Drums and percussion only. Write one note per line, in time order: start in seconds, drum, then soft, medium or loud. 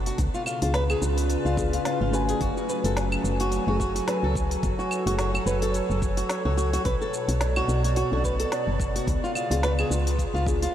0.06 open hi-hat medium
0.06 shaker soft
0.18 kick loud
0.18 open hi-hat soft
0.18 shaker soft
0.34 shaker soft
0.46 claves medium
0.46 shaker medium
0.62 open hi-hat medium
0.62 shaker soft
0.74 snare medium
0.74 open hi-hat soft
0.74 shaker soft
0.90 claves medium
0.90 shaker soft
1.02 shaker medium
1.18 open hi-hat medium
1.18 shaker soft
1.30 open hi-hat soft
1.30 shaker soft
1.46 shaker soft
1.57 kick loud
1.57 shaker medium
1.73 open hi-hat medium
1.73 shaker soft
1.85 snare loud
1.85 open hi-hat soft
1.85 shaker soft
2.14 shaker medium
2.29 open hi-hat medium
2.29 shaker soft
2.41 kick loud
2.41 open hi-hat soft
2.41 shaker soft
2.57 shaker soft
2.69 shaker medium
2.84 open hi-hat medium
2.84 shaker soft
2.97 snare loud
2.97 open hi-hat soft
2.97 shaker soft
3.12 claves medium
3.12 shaker soft
3.25 shaker medium
3.40 open hi-hat medium
3.40 shaker soft
3.52 open hi-hat soft
3.52 shaker soft
3.80 kick medium
3.80 shaker medium
3.96 open hi-hat medium
3.96 shaker soft
4.08 snare loud
4.08 open hi-hat soft
4.08 shaker soft
4.35 kick loud
4.35 shaker medium
4.51 open hi-hat medium
4.51 shaker soft
4.63 kick loud
4.63 open hi-hat soft
4.63 shaker soft
4.80 shaker soft
4.91 claves medium
4.91 shaker medium
5.07 open hi-hat medium
5.07 shaker soft
5.19 snare medium
5.19 open hi-hat soft
5.19 shaker soft
5.35 claves medium
5.35 shaker soft
5.47 shaker medium
5.62 open hi-hat medium
5.62 shaker soft
5.74 open hi-hat soft
5.74 shaker soft
5.91 shaker soft
6.02 kick loud
6.02 shaker medium
6.17 open hi-hat medium
6.17 shaker soft
6.29 snare medium
6.29 open hi-hat soft
6.29 shaker soft
6.58 shaker medium
6.73 open hi-hat medium
6.73 shaker soft
6.85 kick loud
6.85 open hi-hat soft
6.85 shaker soft
7.02 shaker soft
7.14 shaker medium
7.29 open hi-hat medium
7.29 shaker soft
7.41 snare loud
7.41 open hi-hat soft
7.41 shaker soft
7.56 claves medium
7.56 shaker soft
7.69 shaker medium
7.84 open hi-hat medium
7.84 shaker soft
7.96 open hi-hat soft
7.96 shaker soft
8.24 kick medium
8.24 shaker medium
8.40 open hi-hat medium
8.40 shaker soft
8.52 snare loud
8.52 open hi-hat soft
8.52 shaker soft
8.80 kick medium
8.80 shaker medium
8.96 open hi-hat medium
8.96 shaker soft
9.07 kick loud
9.07 open hi-hat soft
9.07 shaker soft
9.25 shaker soft
9.35 claves medium
9.35 shaker medium
9.51 open hi-hat medium
9.51 shaker soft
9.63 snare loud
9.63 open hi-hat soft
9.63 shaker soft
9.79 claves medium
9.79 shaker soft
9.92 shaker medium
10.07 open hi-hat medium
10.07 shaker soft
10.19 kick medium
10.19 open hi-hat soft
10.19 shaker soft
10.36 shaker soft
10.47 kick loud
10.47 shaker medium
10.62 open hi-hat medium
10.62 shaker soft